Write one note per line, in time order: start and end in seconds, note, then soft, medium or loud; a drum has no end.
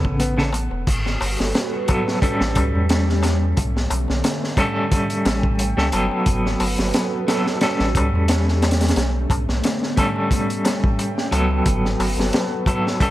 0.00 0.33 C#3 medium
0.00 0.34 B3 medium
0.00 0.18 C#4 medium
0.00 0.34 A4 loud
0.05 0.68 A1 medium
0.05 kick loud
0.05 darbuka tek soft
0.19 0.37 B3 medium
0.19 closed hi-hat medium
0.19 darbuka tek soft
0.37 0.49 C#3 medium
0.37 0.50 B3 medium
0.37 0.50 A4 medium
0.37 snare soft
0.37 darbuka tek soft
0.53 0.85 B3 medium
0.53 closed hi-hat medium
0.53 darbuka tek medium
0.71 0.85 E1 medium
0.71 darbuka tek soft
0.86 1.17 G1 loud
0.86 2.20 G3 medium
0.86 2.20 F#4 medium
0.86 2.20 A4 medium
0.86 2.20 B4 medium
0.86 kick loud
0.86 closed hi-hat medium
0.86 crash medium
0.86 darbuka tek soft
1.06 snare soft
1.06 darbuka tek soft
1.21 1.37 G1 medium
1.21 open hi-hat medium
1.21 darbuka tek medium
1.39 1.53 G1 medium
1.39 snare medium
1.39 darbuka tek soft
1.54 snare loud
1.54 closed hi-hat medium
1.54 darbuka tek medium
1.73 darbuka tek soft
1.88 2.18 F#3 medium
1.88 2.18 B3 medium
1.88 2.19 A4 medium
1.88 kick medium
1.88 closed hi-hat medium
1.88 darbuka tek medium
2.07 snare soft
2.07 darbuka tek soft
2.22 3.55 G3 medium
2.22 6.22 A3 medium
2.22 3.55 C#4 medium
2.22 3.55 G4 medium
2.22 3.56 A4 medium
2.22 kick loud
2.22 closed hi-hat medium
2.22 darbuka tek soft
2.41 2.54 A1 medium
2.41 snare medium
2.55 2.72 C#2 medium
2.55 kick medium
2.55 closed hi-hat medium
2.55 darbuka tek loud
2.75 3.54 E2 medium
2.75 darbuka tek soft
2.89 snare loud
2.89 closed hi-hat medium
2.89 darbuka tek medium
3.07 snare soft
3.07 darbuka tek soft
3.23 snare medium
3.23 closed hi-hat medium
3.23 darbuka tek medium
3.42 darbuka tek soft
3.57 3.87 B1 loud
3.57 4.90 D3 medium
3.57 4.90 B3 medium
3.57 kick loud
3.57 closed hi-hat medium
3.57 darbuka tek medium
3.76 snare soft
3.76 darbuka tek soft
3.90 4.07 B1 medium
3.90 closed hi-hat medium
3.90 darbuka tek medium
4.08 4.23 B1 medium
4.08 snare soft
4.08 darbuka tek soft
4.24 snare loud
4.24 closed hi-hat medium
4.24 darbuka tek medium
4.42 snare soft
4.42 darbuka tek soft
4.57 5.73 G3 medium
4.57 5.73 C#4 medium
4.57 5.74 A4 loud
4.57 kick medium
4.57 closed hi-hat medium
4.57 darbuka tek medium
4.77 darbuka tek soft
4.92 6.25 C#4 medium
4.92 6.25 G5 medium
4.92 kick loud
4.92 closed hi-hat medium
4.92 darbuka tek medium
5.10 closed hi-hat soft
5.10 darbuka tek soft
5.25 5.74 A1 loud
5.25 snare loud
5.25 closed hi-hat medium
5.25 darbuka tek medium
5.43 kick medium
5.43 darbuka tek soft
5.59 closed hi-hat medium
5.59 darbuka tek medium
5.77 5.91 C#2 medium
5.77 5.89 G3 medium
5.77 5.89 C#4 medium
5.77 5.89 A4 medium
5.77 snare soft
5.77 darbuka tek soft
5.92 6.09 G1 loud
5.92 7.23 F#3 medium
5.92 7.24 B3 medium
5.92 7.24 A4 medium
5.92 closed hi-hat medium
5.92 darbuka tek medium
6.11 darbuka tek soft
6.26 6.56 G1 loud
6.26 7.60 F#4 medium
6.26 7.60 A4 medium
6.26 7.60 B4 medium
6.26 kick loud
6.26 closed hi-hat medium
6.26 darbuka tek medium
6.46 snare soft
6.46 darbuka tek soft
6.60 6.76 G1 medium
6.60 open hi-hat medium
6.60 darbuka tek medium
6.79 6.92 G1 medium
6.79 snare medium
6.79 darbuka tek soft
6.94 snare loud
6.94 closed hi-hat medium
6.94 darbuka tek medium
7.14 darbuka tek soft
7.28 7.57 F#3 medium
7.28 7.58 B3 medium
7.28 7.58 A4 medium
7.28 snare loud
7.28 closed hi-hat medium
7.28 darbuka tek medium
7.47 snare soft
7.47 darbuka tek soft
7.60 8.94 G3 medium
7.60 11.61 A3 medium
7.60 8.94 C#4 medium
7.60 8.95 C#4 medium
7.60 8.94 G4 medium
7.60 8.95 A4 medium
7.60 snare loud
7.60 closed hi-hat medium
7.60 darbuka tek soft
7.79 7.93 A1 medium
7.79 snare soft
7.79 darbuka tek soft
7.95 8.11 C#2 medium
7.95 kick medium
7.95 closed hi-hat medium
7.95 darbuka tek loud
8.13 8.93 E2 medium
8.13 darbuka tek soft
8.28 snare loud
8.28 closed hi-hat medium
8.28 darbuka tek medium
8.48 snare soft
8.48 darbuka tek soft
8.62 snare medium
8.62 closed hi-hat medium
8.62 darbuka tek medium
8.71 snare loud
8.71 closed hi-hat medium
8.81 snare medium
8.81 closed hi-hat medium
8.81 darbuka tek soft
8.88 snare medium
8.88 closed hi-hat medium
8.95 9.26 B1 loud
8.95 10.29 D3 medium
8.95 10.29 B3 medium
8.95 snare loud
8.95 closed hi-hat medium
8.95 darbuka tek medium
9.15 darbuka tek soft
9.30 9.46 B1 medium
9.30 kick medium
9.30 closed hi-hat medium
9.30 darbuka tek loud
9.49 9.62 B1 medium
9.49 snare soft
9.49 darbuka tek soft
9.64 snare loud
9.64 closed hi-hat medium
9.64 darbuka tek medium
9.82 snare soft
9.82 darbuka tek soft
9.96 11.12 G3 medium
9.96 11.12 C#4 medium
9.96 11.13 A4 medium
9.96 kick loud
9.96 closed hi-hat medium
9.96 darbuka tek medium
10.16 darbuka tek soft
10.30 11.64 C#4 medium
10.30 11.64 G5 medium
10.30 kick loud
10.30 closed hi-hat medium
10.30 darbuka tek medium
10.49 closed hi-hat soft
10.49 darbuka tek soft
10.65 snare loud
10.65 closed hi-hat medium
10.65 darbuka tek medium
10.84 10.97 A1 loud
10.84 kick loud
10.84 darbuka tek soft
10.99 closed hi-hat medium
10.99 darbuka tek medium
11.17 snare soft
11.17 darbuka tek soft
11.31 11.62 C#2 medium
11.31 12.63 F#3 medium
11.31 12.63 B3 medium
11.31 12.64 A4 medium
11.31 closed hi-hat medium
11.31 darbuka tek loud
11.51 darbuka tek soft
11.64 11.96 G1 loud
11.64 12.98 F#4 medium
11.64 12.98 A4 medium
11.64 12.98 B4 medium
11.64 kick loud
11.64 closed hi-hat medium
11.64 darbuka tek soft
11.85 snare soft
11.85 darbuka tek soft
12.00 12.15 G1 medium
12.00 open hi-hat medium
12.00 darbuka tek medium
12.18 12.31 G1 medium
12.18 snare medium
12.18 darbuka tek soft
12.33 snare loud
12.33 closed hi-hat medium
12.33 darbuka tek medium
12.52 darbuka tek soft
12.66 12.97 F#3 medium
12.66 12.97 B3 medium
12.66 12.97 A4 medium
12.66 kick medium
12.66 closed hi-hat medium
12.66 darbuka tek medium
12.86 snare soft
12.86 darbuka tek soft
13.00 13.11 G3 medium
13.00 13.11 A3 medium
13.00 13.11 C#4 medium
13.00 13.11 G4 medium
13.00 13.11 A4 medium
13.00 kick loud
13.00 closed hi-hat loud
13.00 darbuka tek soft